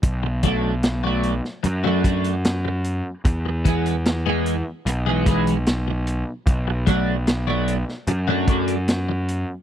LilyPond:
<<
  \new Staff \with { instrumentName = "Clean electric guitar" } { \time 4/4 \key b \dorian \tempo 4 = 75 r8 <fis a d' fis'>16 r8 <fis a d' fis'>16 r8. <fis a d' fis'>16 <fis a d' fis'>16 r4 r16 | r8 <e gis b gis'>16 r8 <e gis b gis'>16 r8. <e gis b gis'>16 <e gis b gis'>16 r4 r16 | r8 <fis a d' fis'>16 r8 <fis a d' fis'>16 r8. <fis a d' fis'>16 <fis a d' fis'>16 r4 r16 | }
  \new Staff \with { instrumentName = "Picked electric bass" } { \clef bass \time 4/4 \key b \dorian b,,2 fis,2 | e,2 b,,2 | b,,2 fis,2 | }
  \new DrumStaff \with { instrumentName = "Drums" } \drummode { \time 4/4 <hh bd>8 <hh bd>8 <hh sn>8 hh16 sn16 hh8 <hh bd>16 hh16 <hh sn>8 hh8 | <hh bd>8 <hh bd>16 hh16 <hh sn>8 hh8 hh8 <hh bd>16 hh16 <hh sn>8 hh8 | <hh bd>8 <hh bd>8 <hh sn>8 hh16 sn16 hh8 <hh bd>16 hh16 <hh sn>8 hh8 | }
>>